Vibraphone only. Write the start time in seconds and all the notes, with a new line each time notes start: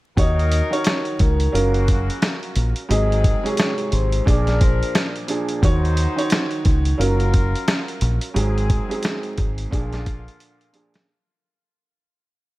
0.18 D#5 D#6
0.72 C#5 C#6
1.19 A#4 A#5
2.90 D#5 D#6
3.44 C#5 C#6
3.92 C5 C6
4.26 D5 D6
4.61 C5 C6